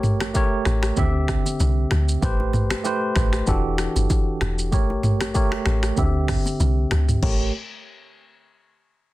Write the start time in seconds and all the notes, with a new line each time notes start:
Already playing: A1 A3 G4 A#4 C#5
0.03 mid tom, low bongo, shaker
0.20 finger snap, cross-stick, low bongo, shaker
0.34 A3 G4 A#4 C#5, kick, high bongo, shaker
0.65 A1, finger snap, cross-stick, shaker
0.83 finger snap, cross-stick, shaker
0.96 D2 D3 C4 G4 E5, kick, low conga, shaker
1.28 finger snap, kick, cross-stick, shaker
1.46 low bongo, shaker
1.60 C2, high bongo, shaker
1.91 D2, finger snap, cross-stick, low bongo, low conga, shaker
2.09 shaker
2.21 A1 A3 G4 B4 C5, kick, low conga, shaker
2.40 high bongo
2.53 mid tom, low bongo, shaker
2.70 finger snap, cross-stick, low bongo, shaker
2.84 A3 G4 B4 C5, high bongo, shaker
3.16 A1, finger snap, kick, cross-stick, shaker
3.33 finger snap, cross-stick, shaker
3.46 E1 E3 D4 F#4 G4 A4, kick, low conga, shaker
3.78 finger snap, cross-stick, shaker
3.96 G1, low bongo, shaker
4.10 kick, high bongo, shaker
4.41 E1, finger snap, cross-stick, low bongo, low conga, shaker
4.59 shaker
4.71 A1 A3 G4 A#4 C#5, kick, low conga, shaker
4.90 high bongo
5.03 mid tom, low bongo, shaker
5.21 finger snap, cross-stick, low bongo, shaker
5.34 A3 G4 A#4 C#5, kick, high bongo, shaker
5.52 finger snap, cross-stick
5.66 A1, finger snap, cross-stick, shaker
5.83 finger snap, cross-stick, shaker
5.96 D2 D3 C4 G4 E5, kick, low conga, shaker
6.28 finger snap, kick, cross-stick, mid tom, open hi-hat, shaker
6.46 low bongo, shaker
6.60 C2, high bongo, shaker
6.91 D2, finger snap, cross-stick, low bongo, low conga, shaker
7.09 mid tom, shaker
7.23 A1 A3 G4 A#4 C#5, kick, crash, low conga